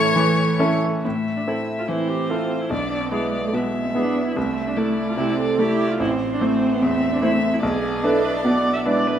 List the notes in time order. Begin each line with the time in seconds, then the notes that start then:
Already playing: A2 E3 C#4 E4 A4 C#5
0.16 E3
0.59 C#4 E4 A4
1.03 A2 C4 E5
1.36 D4
1.47 C4 E4 A4
1.79 F4
1.88 E3 C4 E4 C5
2.08 G4
2.30 C4 E4 F4 A4
2.61 E4
2.70 B1 B3 D4 D5
3.02 C4
3.11 G#3 B3 E4 G#4 D5
3.45 A3
3.53 B2 G#3 B3 E5
3.85 C4
3.94 B3 D4 E4 G#4
4.27 E4
4.36 C2 A3 C4 E5
4.67 D4
4.77 A3 E4 A4 D5
5.09 F4
5.17 C3 C4 E4
5.40 A4
5.59 A3 E4 G4 A4
5.90 F4
6.00 A1 C4 E4 C5
6.33 D4
6.41 A3 C4 E4 C5
6.72 B3
6.81 E2 C4 E5
7.12 D4
7.22 A3 E4 C5 E5
7.53 E4
7.62 B1 B3 G#4 D5
8.04 D4 E4 A4 B4
8.24 B4
8.45 B2 B3 D5
8.73 E5
8.86 G#3 D4 E4 B4 D5
9.07 B4